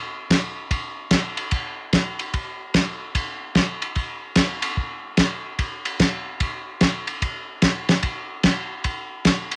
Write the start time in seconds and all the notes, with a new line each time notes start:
0.30 kick, snare, hi-hat pedal, ride
0.71 kick, ride
1.11 kick, snare, hi-hat pedal, ride
1.37 ride
1.51 kick, ride
1.93 kick, snare, hi-hat pedal, ride
2.19 ride
2.34 kick, ride
2.74 kick, snare, hi-hat pedal, ride
3.15 kick, ride
3.55 kick, snare, hi-hat pedal, ride
3.82 ride
3.96 kick, ride
4.36 kick, snare, hi-hat pedal, ride
4.62 ride
4.77 kick
5.17 kick, snare, hi-hat pedal, ride
5.59 kick, ride
5.85 ride
6.00 kick, snare, hi-hat pedal, ride
6.40 kick, ride
6.81 kick, snare, hi-hat pedal, ride
7.07 ride
7.22 kick, ride
7.62 kick, snare, hi-hat pedal, ride
7.89 snare, ride
8.03 kick, ride
8.43 kick, snare, hi-hat pedal, ride
8.84 kick, ride
9.25 kick, snare, hi-hat pedal, ride
9.52 ride